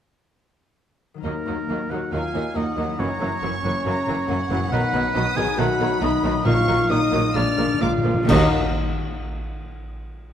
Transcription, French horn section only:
1.24 1.87 A#3 soft
1.91 2.13 F#4 medium
2.13 2.56 F4 medium
2.57 2.99 D#4 medium
3.00 4.73 C#4 medium
4.72 5.36 B3 medium
5.37 5.47 G#4 medium
5.58 6.01 F#4 medium
6.02 6.46 D#4 medium
6.46 6.89 F4 medium
6.90 7.35 D#4 medium
7.35 7.80 D4 medium
7.81 8.28 F4 medium
8.29 8.48 D#4 medium

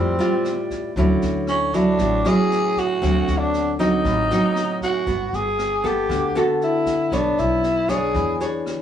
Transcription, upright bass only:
0.00 0.18 F2 loud
0.96 1.20 D2 medium
1.22 1.95 D2 medium
1.99 2.23 A1 medium
3.02 3.26 D2 medium
3.28 4.01 D2 medium
4.05 4.28 A1 medium
5.07 5.31 G1 medium
5.33 6.06 G1 medium
6.09 6.33 D2 medium
7.12 7.36 B1 medium
7.39 8.11 B1 medium
8.15 8.38 E2 medium

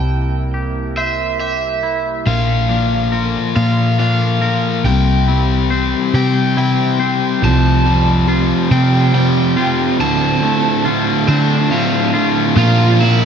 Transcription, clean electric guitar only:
0.00 1.84 C3 medium
0.00 1.40 E4 medium
0.00 0.53 G4 medium
0.00 0.54 C5 medium
0.54 1.39 G4 soft
0.97 2.27 C5 medium
1.40 2.27 G4 medium
1.83 2.26 E4 medium
2.27 4.42 A#2 medium
2.69 3.97 D4 medium
3.12 4.40 A#4 medium
3.55 4.85 F4 medium
3.98 4.85 D4 medium
4.42 4.85 A#4 medium
4.85 6.99 C3 medium
5.27 6.56 E4 medium
5.70 6.99 C5 medium
6.14 7.43 G4 medium
6.57 7.43 E4 medium
7.00 8.28 C5 medium
7.42 9.57 F2 medium
7.85 9.13 G3 medium
8.28 9.56 F4 medium
8.71 10.00 C4 medium
9.14 10.00 G3 medium
9.57 10.84 F4 medium
10.00 12.14 D2 medium
10.42 11.69 A3 medium
10.85 12.12 F4 medium
11.28 12.56 C4 medium
11.71 12.56 A3 medium
12.14 12.56 F4 medium

